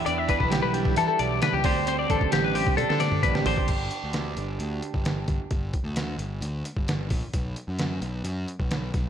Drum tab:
CC |----------------|----------------|x---------------|----------------|
HH |x-x-x-x-x-x-x-o-|x-x-x-o-x-x-x-o-|x-x-x-x-x-x-x-x-|x-x-x-x-x-x-x-o-|
SD |----o-------o---|----o----oo--o--|----o-------o---|----o-------o---|
T1 |----------------|--------o-------|----------------|----------------|
T2 |----------------|-----------o----|----------------|----------------|
FT |----------------|--------------o-|----------------|----------------|
BD |--oo---o------o-|--oo---o----o--o|o----------o--o-|o-o--------o--o-|

CC |----------------|
HH |x-x-x-x-x-x-x-x-|
SD |----o-------o-o-|
T1 |----------------|
T2 |----------------|
FT |----------------|
BD |o----------o--o-|